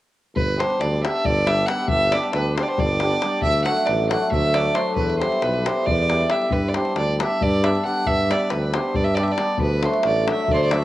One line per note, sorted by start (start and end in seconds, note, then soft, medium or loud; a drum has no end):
0.35 0.62 G1 medium
0.35 0.61 B4 loud
0.35 davul low medium
0.57 1.03 G3 medium
0.57 0.73 B3 medium
0.57 0.73 D4 medium
0.57 0.74 G4 medium
0.57 0.81 C5 medium
0.57 davul high medium
0.70 davul high soft
0.80 1.07 D2 medium
0.80 1.03 D5 medium
0.80 davul high soft
1.03 1.45 G3 medium
1.03 1.18 B3 medium
1.03 1.19 D4 medium
1.03 1.19 G4 medium
1.03 1.26 E5 medium
1.03 davul high medium
1.25 1.64 G1 medium
1.25 1.48 D5 medium
1.25 davul low medium
1.47 1.68 G3 medium
1.47 1.61 B3 medium
1.47 1.62 D4 medium
1.47 1.62 G4 medium
1.47 1.68 E5 medium
1.47 davul high medium
1.58 davul high soft
1.66 2.12 G3 medium
1.66 1.83 B3 soft
1.66 1.88 F#5 medium
1.66 davul high medium
1.70 1.83 D4 medium
1.70 1.84 G4 medium
1.88 2.16 G1 medium
1.88 2.13 E5 loud
1.88 davul low medium
2.12 2.56 G3 medium
2.12 2.28 B3 medium
2.12 2.28 D4 medium
2.12 2.28 G4 medium
2.12 2.33 D5 medium
2.12 davul high medium
2.23 davul high soft
2.33 2.61 D2 medium
2.33 2.56 B4 medium
2.33 davul high medium
2.57 3.00 G3 medium
2.57 2.72 B3 medium
2.57 2.72 D4 soft
2.57 2.73 G4 medium
2.57 2.64 C5 medium
2.57 davul high medium
2.63 2.69 D5 medium
2.68 2.81 C5 medium
2.78 3.18 G1 loud
2.78 3.42 D5 medium
2.78 davul low medium
3.00 3.22 G3 medium
3.00 3.16 B3 medium
3.00 3.16 D4 medium
3.00 3.17 G4 medium
3.00 davul high medium
3.11 davul high soft
3.22 3.48 G3 medium
3.22 3.37 B3 soft
3.22 3.37 D4 soft
3.22 3.38 G4 medium
3.22 davul high medium
3.42 3.70 D2 medium
3.42 3.64 E5 loud
3.42 davul low medium
3.64 4.10 F#3 medium
3.64 3.81 A3 medium
3.64 3.81 D4 medium
3.64 3.81 F#4 medium
3.64 3.87 F#5 medium
3.64 davul high medium
3.77 davul high soft
3.85 4.15 A1 medium
3.85 4.09 D5 medium
3.85 davul high soft
4.10 4.53 F#3 medium
4.10 4.26 A3 medium
4.10 4.26 D4 medium
4.10 4.27 F#4 medium
4.10 4.30 F#5 medium
4.10 davul high medium
4.32 4.71 D2 medium
4.32 4.56 E5 medium
4.32 davul low medium
4.54 4.74 F#3 medium
4.54 4.69 A3 medium
4.54 4.69 D4 medium
4.54 4.69 F#4 medium
4.54 4.77 D5 medium
4.54 davul high medium
4.65 davul high soft
4.75 5.02 F#3 medium
4.75 4.90 A3 medium
4.75 4.90 D4 medium
4.75 4.90 F#4 medium
4.75 4.96 C5 medium
4.75 davul high medium
4.96 5.24 E2 medium
4.96 5.18 B4 medium
4.96 davul low medium
5.10 davul high soft
5.19 5.64 G3 medium
5.19 5.35 B3 medium
5.19 5.35 E4 medium
5.19 5.35 G4 medium
5.19 5.44 C5 medium
5.19 davul high medium
5.32 davul high soft
5.42 5.69 B1 medium
5.42 5.67 B4 medium
5.42 davul high medium
5.54 davul high soft
5.65 6.07 G3 medium
5.65 5.80 B3 medium
5.65 5.80 E4 soft
5.65 5.80 G4 medium
5.65 5.87 C5 medium
5.65 davul high medium
5.85 6.25 E2 medium
5.85 6.32 D5 medium
5.85 davul low medium
5.98 davul high soft
6.09 6.28 G3 medium
6.09 6.23 B3 medium
6.09 6.24 E4 medium
6.09 6.24 G4 medium
6.09 davul high medium
6.21 davul high soft
6.30 6.56 G3 medium
6.30 6.44 B3 medium
6.30 6.45 E4 medium
6.30 6.45 G4 medium
6.30 6.54 E5 medium
6.30 davul high medium
6.42 davul high soft
6.51 6.78 G2 medium
6.51 6.70 B4 medium
6.51 davul low medium
6.68 6.77 D5 medium
6.74 7.17 G3 medium
6.74 6.90 B3 soft
6.74 6.90 D4 medium
6.74 6.90 G4 medium
6.74 6.96 C5 medium
6.74 davul high medium
6.85 davul high soft
6.95 7.22 D2 medium
6.95 7.18 D5 medium
6.95 davul high medium
7.19 7.61 G3 medium
7.19 7.34 B3 medium
7.19 7.34 D4 medium
7.19 7.35 G4 medium
7.19 7.44 E5 medium
7.19 davul high medium
7.41 7.80 G2 loud
7.41 7.66 D5 medium
7.41 davul low medium
7.62 7.83 G3 medium
7.62 7.77 B3 medium
7.62 7.77 D4 medium
7.62 7.78 G4 medium
7.62 7.84 E5 medium
7.62 davul high medium
7.75 davul high soft
7.84 8.28 G3 medium
7.84 7.99 B3 medium
7.84 7.99 D4 soft
7.84 7.99 G4 medium
7.84 8.08 F#5 medium
8.06 8.33 G2 medium
8.06 8.33 E5 loud
8.06 davul low medium
8.29 8.72 G3 medium
8.29 8.44 B3 medium
8.29 8.44 D4 soft
8.29 8.44 G4 medium
8.29 8.52 D5 medium
8.29 davul high medium
8.41 davul high soft
8.50 8.78 D2 medium
8.50 8.76 B4 medium
8.50 davul high medium
8.73 9.17 G3 medium
8.73 8.88 B3 medium
8.73 8.88 D4 medium
8.73 8.88 G4 medium
8.73 8.97 C5 medium
8.73 davul high medium
8.94 9.34 G2 medium
8.94 9.06 D5 medium
8.94 davul low medium
9.04 9.16 E5 medium
9.14 9.38 G3 medium
9.14 9.24 D5 medium
9.14 davul high medium
9.19 9.32 B3 medium
9.19 9.32 D4 medium
9.19 9.32 G4 medium
9.23 9.33 E5 medium
9.28 9.60 D5 medium
9.28 davul high soft
9.38 9.64 G3 medium
9.38 9.53 B3 medium
9.38 9.53 D4 soft
9.38 9.53 G4 medium
9.38 davul high medium
9.58 9.86 D2 loud
9.58 9.87 B4 medium
9.58 davul low medium
9.83 10.24 F#3 medium
9.83 9.97 A3 medium
9.83 9.97 D4 medium
9.83 9.98 F#4 medium
9.83 10.05 C5 medium
9.83 davul high medium
9.94 davul high soft
10.03 10.31 A1 medium
10.03 10.27 D5 medium
10.03 davul high medium
10.26 10.70 F#3 medium
10.26 10.41 A3 medium
10.26 10.42 D4 medium
10.26 10.42 F#4 medium
10.26 davul high medium
10.31 10.53 E5 medium
10.48 10.84 D2 medium
10.48 10.55 D5 medium
10.48 davul low medium
10.54 10.64 C5 medium
10.63 10.75 D5 medium
10.71 10.84 F#3 medium
10.71 10.84 A3 medium
10.71 10.84 D4 soft
10.71 10.84 F#4 medium
10.71 10.84 E5 medium
10.71 davul high medium